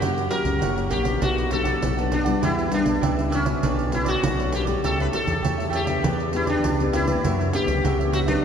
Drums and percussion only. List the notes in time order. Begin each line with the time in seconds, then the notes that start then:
0.02 pandeiro
0.18 pandeiro
0.31 pandeiro
0.45 pandeiro
0.62 pandeiro
0.78 pandeiro
0.91 pandeiro
1.05 pandeiro
1.22 pandeiro
1.38 pandeiro
1.51 pandeiro
1.65 pandeiro
1.82 pandeiro
1.99 pandeiro
2.12 pandeiro
2.26 pandeiro
2.43 pandeiro
2.59 pandeiro
2.72 pandeiro
2.86 pandeiro
3.03 pandeiro
3.19 pandeiro
3.32 pandeiro
3.46 pandeiro
3.63 pandeiro
3.79 pandeiro
3.92 pandeiro
4.06 pandeiro
4.23 pandeiro
4.40 pandeiro
4.53 pandeiro
4.67 pandeiro
4.84 pandeiro
5.00 pandeiro
5.13 pandeiro
5.27 pandeiro
5.45 pandeiro
5.60 pandeiro
5.73 pandeiro
5.87 pandeiro
6.04 pandeiro
6.20 pandeiro
6.33 pandeiro
6.47 pandeiro
6.64 pandeiro
6.80 pandeiro
6.93 pandeiro
7.08 pandeiro
7.24 pandeiro
7.41 pandeiro
7.53 pandeiro
7.68 pandeiro
7.85 pandeiro
8.01 pandeiro
8.13 pandeiro
8.28 pandeiro